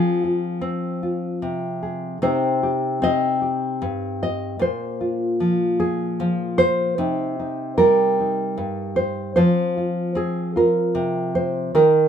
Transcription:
0.00 2.22 F3 medium
0.00 0.61 C4 soft
0.00 0.23 F4 soft
0.00 1.81 G#4 medium
0.24 1.02 F4 soft
0.61 2.16 C4 medium
1.03 2.17 F4 soft
1.42 2.21 C3 medium
1.83 2.17 G#4 soft
2.22 3.81 C3 medium
2.22 3.01 C4 soft
2.22 4.56 D#4 soft
2.22 2.62 G4 soft
2.22 3.01 C5 loud
2.63 3.40 G4 soft
3.02 4.56 C4 medium
3.02 4.21 D#5 loud
3.42 4.56 G4 soft
3.82 4.59 G2 medium
4.23 4.61 D#5 medium
4.59 6.94 A#2 medium
4.59 6.20 C5 medium
5.01 5.79 F4 soft
5.40 6.19 F3 medium
5.80 6.98 G#4 medium
6.20 6.94 F3 medium
6.58 7.77 C5 loud
6.98 8.57 C3 medium
6.98 7.38 D#4 soft
7.39 8.19 D#4 soft
7.78 9.32 G3 medium
7.78 8.96 A#4 medium
8.20 9.34 D#4 soft
8.57 9.37 G2 medium
8.96 9.35 C5 medium
9.36 11.76 F3 medium
9.36 10.14 C4 soft
9.36 9.76 F4 soft
9.36 10.56 C5 medium
9.77 10.16 F4 soft
10.15 11.70 C4 medium
10.15 10.55 G#4 medium
10.56 11.71 F4 soft
10.56 11.35 A#4 medium
10.95 11.74 C3 medium
11.35 11.75 C5 medium
11.75 12.08 D#3 medium
11.75 12.08 A#4 medium

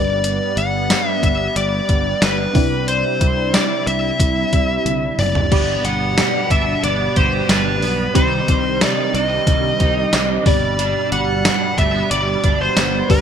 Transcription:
0.00 0.39 G1 medium
0.00 0.86 G2 medium
0.00 5.48 G3 medium
0.00 2.50 B3 medium
0.00 2.52 B3 medium
0.00 2.51 D4 medium
0.00 2.51 G4 medium
0.00 2.51 B4 medium
0.00 0.59 D5 loud
0.00 2.52 D5 medium
0.24 closed hi-hat medium
0.57 0.93 G1 loud
0.57 1.09 F#5 loud
0.57 closed hi-hat medium
0.90 snare loud
0.90 closed hi-hat loud
0.90 tambourine medium
1.09 1.24 E5 loud
1.23 1.47 G1 loud
1.23 1.54 E5 loud
1.23 kick medium
1.23 closed hi-hat medium
1.56 1.80 G1 loud
1.56 2.24 D5 loud
1.56 closed hi-hat loud
1.89 2.13 G1 loud
1.89 kick medium
1.89 closed hi-hat medium
2.22 2.46 G1 loud
2.22 2.88 B4 loud
2.22 snare loud
2.22 closed hi-hat medium
2.22 tambourine medium
2.54 3.02 C2 loud
2.54 5.49 C3 medium
2.54 3.50 C3 medium
2.54 5.15 C4 medium
2.54 5.14 D4 medium
2.54 5.14 E4 medium
2.54 5.49 E4 medium
2.54 5.15 G4 medium
2.54 5.15 D5 medium
2.54 kick loud
2.54 open hi-hat medium
2.88 3.56 C5 medium
2.88 closed hi-hat medium
3.21 3.57 C2 loud
3.21 kick loud
3.21 closed hi-hat medium
3.54 3.87 D5 loud
3.54 snare loud
3.54 closed hi-hat loud
3.54 tambourine medium
3.87 4.11 C2 loud
3.87 5.19 E5 loud
3.87 closed hi-hat medium
4.20 4.43 C2 medium
4.20 kick loud
4.20 closed hi-hat loud
4.53 4.77 C2 loud
4.53 kick loud
4.53 closed hi-hat medium
4.86 5.09 C2 loud
4.86 closed hi-hat medium
4.86 high tom medium
5.19 5.42 F#1 medium
5.19 5.87 D5 loud
5.19 mid tom loud
5.19 open hi-hat medium
5.35 floor tom loud
5.51 5.75 G1 loud
5.51 6.47 G2 medium
5.51 8.11 B2 medium
5.51 8.13 B2 medium
5.51 13.21 G3 medium
5.51 5.84 B3 medium
5.51 8.11 D4 medium
5.51 8.11 G4 medium
5.51 6.17 G4 medium
5.51 8.12 D5 medium
5.51 8.12 B5 medium
5.51 kick loud
5.51 crash medium
5.85 6.20 G1 loud
5.85 6.83 B3 medium
5.85 6.53 F#5 loud
5.85 closed hi-hat medium
6.18 7.16 G4 medium
6.18 snare loud
6.18 closed hi-hat medium
6.18 tambourine medium
6.50 6.74 G1 loud
6.50 7.49 D4 medium
6.50 6.84 E5 loud
6.50 kick medium
6.50 closed hi-hat medium
6.84 7.07 G1 loud
6.84 7.82 B3 medium
6.84 7.14 D5 loud
6.84 closed hi-hat medium
7.16 7.40 G1 loud
7.16 10.67 G4 medium
7.16 7.50 C5 medium
7.16 kick loud
7.16 closed hi-hat medium
7.49 7.82 G1 loud
7.49 8.16 D4 medium
7.49 8.15 B4 medium
7.49 snare loud
7.49 closed hi-hat medium
7.49 tambourine medium
7.82 8.06 B1 loud
7.82 8.22 B3 medium
7.82 open hi-hat medium
8.14 8.39 C2 loud
8.14 9.10 C3 medium
8.14 10.44 C3 medium
8.14 10.42 D#3 medium
8.14 10.44 D#3 medium
8.14 8.48 G3 medium
8.14 10.41 C4 medium
8.14 8.80 D#4 medium
8.14 10.42 G4 medium
8.14 10.42 C5 medium
8.14 8.84 C5 medium
8.14 kick loud
8.14 closed hi-hat medium
8.48 8.84 C2 loud
8.48 9.47 G3 medium
8.48 kick loud
8.48 closed hi-hat medium
8.81 9.79 D#4 medium
8.81 9.15 D5 medium
8.81 snare loud
8.81 closed hi-hat medium
8.81 tambourine medium
9.14 9.38 C2 loud
9.14 10.13 D4 medium
9.14 10.46 D#5 loud
9.14 closed hi-hat medium
9.47 9.71 C2 loud
9.47 10.46 G3 medium
9.47 kick loud
9.47 closed hi-hat medium
9.80 10.04 C2 loud
9.80 10.53 D#4 medium
9.80 kick medium
9.80 closed hi-hat medium
10.13 10.37 C2 loud
10.13 10.80 D4 medium
10.13 snare loud
10.13 closed hi-hat medium
10.13 tambourine medium
10.45 10.94 G1 loud
10.45 11.41 G2 medium
10.45 13.05 B2 medium
10.45 13.21 B2 medium
10.45 10.79 G3 medium
10.45 13.06 D4 medium
10.45 13.06 G4 medium
10.45 11.08 D5 loud
10.45 13.07 D5 medium
10.45 13.06 B5 medium
10.45 kick loud
10.45 open hi-hat medium
10.79 11.12 G3 medium
10.79 11.45 D4 medium
10.79 closed hi-hat medium
11.12 11.48 G1 loud
11.12 12.11 G3 medium
11.12 11.80 F#5 medium
11.12 closed hi-hat medium
11.45 12.44 D4 medium
11.45 snare loud
11.45 closed hi-hat loud
11.45 tambourine medium
11.78 12.02 G1 loud
11.78 11.95 A3 medium
11.78 12.11 E5 loud
11.78 kick medium
11.78 closed hi-hat medium
11.95 12.76 B3 medium
12.11 12.35 G1 loud
12.11 13.09 G3 medium
12.11 12.62 D5 loud
12.11 closed hi-hat loud
12.44 12.68 G1 loud
12.44 13.21 D4 medium
12.44 kick medium
12.44 closed hi-hat medium
12.61 13.10 C5 medium
12.77 13.01 G1 medium
12.77 13.21 B3 medium
12.77 snare loud
12.77 closed hi-hat medium
12.77 tambourine medium
13.09 13.21 G1 loud
13.09 13.21 G2 medium
13.09 13.21 G3 medium
13.09 13.21 B3 medium
13.09 13.21 D4 medium
13.09 13.21 G4 medium
13.09 13.21 B4 medium
13.09 13.21 D5 medium
13.09 kick loud
13.09 open hi-hat medium

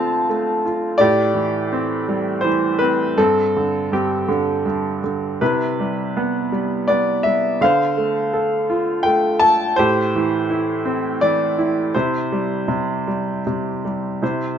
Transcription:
0.00 0.96 D3 soft
0.00 0.28 A3 soft
0.00 0.97 C4 soft
0.00 0.64 F4 soft
0.00 1.02 C5 soft
0.00 1.02 F5 medium
0.00 0.61 A5 medium
0.29 0.98 A3 soft
0.66 0.99 F4 soft
0.98 3.13 A2 medium
0.98 2.40 G4 medium
0.98 2.47 D5 medium
1.34 2.43 E3 soft
1.72 2.80 C4 soft
2.08 3.14 G3 soft
2.41 3.15 E3 soft
2.41 2.76 C5 medium
2.79 3.16 C4 soft
2.79 3.17 B4 medium
3.18 3.90 G2 medium
3.18 3.92 C4 soft
3.18 3.93 A4 medium
3.57 4.27 D3 soft
3.92 4.64 G2 soft
3.92 5.00 C4 soft
3.92 5.00 G4 medium
4.29 5.02 D3 soft
4.66 5.39 G2 soft
5.04 5.40 D3 soft
5.41 7.57 C3 medium
5.41 6.86 E4 soft
5.41 6.85 B4 medium
5.80 6.51 G3 soft
6.17 6.88 B3 soft
6.52 7.25 G3 soft
6.88 7.59 B3 soft
6.88 7.26 D5 medium
7.23 7.61 G3 soft
7.23 7.58 E5 medium
7.61 9.73 D3 medium
7.61 9.03 C5 medium
7.61 9.10 F5 medium
7.97 9.04 A3 soft
8.33 9.41 A4 soft
8.70 9.74 F4 medium
9.03 9.75 A3 soft
9.03 9.41 G5 medium
9.40 9.77 A4 soft
9.40 9.74 A5 medium
9.76 11.91 A2 medium
9.76 11.18 G4 medium
9.76 11.25 C5 medium
10.16 11.21 E3 soft
10.50 11.57 E4 medium
10.85 11.91 C4 medium
11.21 11.93 E3 soft
11.21 11.90 D5 medium
11.59 11.94 E4 soft
11.95 12.67 C3 medium
11.95 13.43 E4 soft
11.95 13.41 C5 medium
12.32 13.06 G3 soft
12.68 13.45 C3 soft
13.07 13.83 G3 soft
13.47 14.20 C3 soft
13.85 14.21 G3 soft
14.22 14.58 C3 soft
14.22 14.58 E4 soft
14.22 14.58 C5 soft

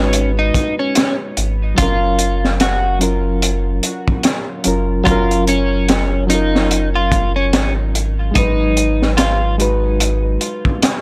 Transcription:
0.00 0.51 G#1 loud
0.00 1.79 G#3 medium
0.00 0.31 C#4 medium
0.00 1.79 D#4 medium
0.00 1.80 F#4 medium
0.00 1.80 B4 loud
0.13 closed hi-hat medium
0.39 0.74 D#4 medium
0.54 kick medium
0.54 closed hi-hat medium
0.79 1.15 C#4 medium
0.95 snare loud
0.95 closed hi-hat medium
1.37 1.74 G#1 medium
1.37 closed hi-hat medium
1.75 3.80 F#1 loud
1.75 2.96 F#3 medium
1.75 2.97 C#4 medium
1.75 2.53 F4 loud
1.75 kick medium
1.75 closed hi-hat medium
1.80 2.99 A#4 medium
1.80 2.98 F5 medium
2.19 closed hi-hat medium
2.45 snare soft
2.60 2.98 F#4 medium
2.60 snare loud
2.60 closed hi-hat medium
2.99 3.27 F#3 medium
2.99 3.28 C#4 medium
2.99 3.29 F4 medium
2.99 3.29 A#4 medium
2.99 closed hi-hat medium
3.42 closed hi-hat medium
3.83 closed hi-hat medium
4.08 kick medium
4.23 snare loud
4.23 closed hi-hat medium
4.64 5.03 F#1 medium
4.64 5.02 F#3 medium
4.64 5.02 C#4 medium
4.64 5.03 F4 medium
4.64 5.04 A#4 medium
4.64 closed hi-hat medium
5.04 7.55 F#1 loud
5.04 6.24 F#3 medium
5.04 6.26 C#4 medium
5.04 5.44 F4 medium
5.04 kick medium
5.04 closed hi-hat medium
5.09 6.27 F4 medium
5.09 6.28 A#4 loud
5.31 closed hi-hat soft
5.47 6.24 C#4 medium
5.47 closed hi-hat medium
5.89 snare loud
5.89 closed hi-hat medium
6.27 8.30 F#3 medium
6.27 8.31 C#4 medium
6.27 6.88 D#4 medium
6.27 closed hi-hat medium
6.32 8.32 F4 medium
6.32 8.34 A#4 medium
6.55 snare medium
6.71 closed hi-hat medium
6.95 7.32 F4 medium
7.12 kick medium
7.12 closed hi-hat medium
7.36 7.72 C#4 medium
7.53 8.32 G#1 medium
7.53 snare loud
7.53 closed hi-hat medium
7.95 closed hi-hat medium
8.31 9.52 G#3 medium
8.31 9.54 D#4 medium
8.35 10.38 G#1 medium
8.35 9.55 F#3 medium
8.35 9.11 D#4 medium
8.35 9.56 B4 medium
8.35 kick loud
8.35 closed hi-hat medium
8.77 closed hi-hat medium
9.02 snare soft
9.17 9.55 F4 medium
9.17 snare loud
9.17 closed hi-hat medium
9.58 9.86 G#3 medium
9.58 9.86 D#4 medium
9.58 9.87 F#4 medium
9.58 9.87 B4 medium
9.58 closed hi-hat medium
10.00 closed hi-hat medium
10.41 closed hi-hat medium
10.65 kick medium
10.82 snare loud
10.82 closed hi-hat loud

